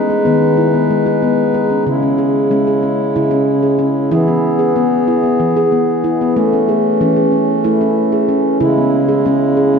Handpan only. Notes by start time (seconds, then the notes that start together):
Already playing: G#3
0.10 G#4
0.25 D#3 B3
0.57 E4
0.74 B3
0.90 G#3
1.06 G#4
1.22 B3
1.54 G#4
1.70 C#4
1.86 C#3
2.02 C#4
2.18 G#4
2.51 G#3 C#4
2.67 G#4
2.83 C#4
3.16 C#3 E4
3.31 C#4
3.63 G#4
3.79 C#4
4.11 E3 E4
4.28 B3
4.59 G#4
4.76 B3
5.08 E4
5.24 B3
5.40 E3
5.56 G#4
5.72 B3
6.04 E4
6.21 B3
6.36 A3
6.53 C#4
6.69 G#4
7.01 E3 C#4
7.16 G#4
7.32 C#4
7.64 A3 E4
7.81 C#4
8.13 G#4
8.29 C#4
8.60 C#3 E4
8.77 B3
9.09 G#4
9.26 G#3 C#4
9.57 G#4
9.74 C#4